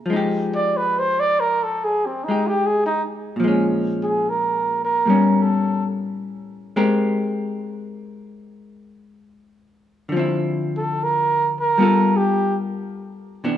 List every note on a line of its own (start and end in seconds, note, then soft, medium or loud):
0.06 3.38 F3 medium
0.10 2.27 G#3 soft
0.10 2.29 D#4 soft
0.16 2.30 G4 soft
0.55 0.79 D5 medium
0.77 1.00 B4 medium
0.99 1.21 C5 medium
1.20 1.41 D5 medium
1.40 1.65 A#4 medium
1.63 1.85 A4 medium
1.84 2.07 G#4 medium
2.06 2.26 C4 medium
2.24 2.49 D#4 medium
2.28 3.38 G#3 soft
2.28 3.39 D#4 soft
2.28 3.39 G4 soft
2.47 2.68 G4 medium
2.66 2.85 G#4 medium
2.86 3.02 D#4 medium
3.36 5.05 A#2 soft
3.36 5.07 F3 soft
3.44 5.09 G#3 soft
3.44 5.09 C#4 soft
4.03 4.31 G#4 medium
4.29 4.82 A#4 medium
4.85 5.44 A#4 medium
5.06 6.75 A2 soft
5.06 6.76 G3 soft
5.06 6.76 B3 soft
5.10 6.76 C#4 soft
5.42 5.86 A4 medium
6.76 10.12 G#3 medium
6.76 10.12 C4 medium
6.76 10.13 G4 medium
6.76 10.13 A#4 medium
10.09 11.77 D3 medium
10.09 11.77 F3 medium
10.17 11.79 C4 medium
10.17 11.80 E4 medium
10.77 11.05 A4 medium
11.03 11.55 A#4 medium
11.60 12.18 A#4 medium
11.78 13.43 G3 soft
11.78 13.44 B3 medium
11.78 13.44 F4 soft
11.82 13.45 A4 medium
12.17 12.57 G4 medium
13.44 13.57 C3 soft
13.44 13.57 E3 soft
13.44 13.57 B3 soft
13.44 13.57 D4 soft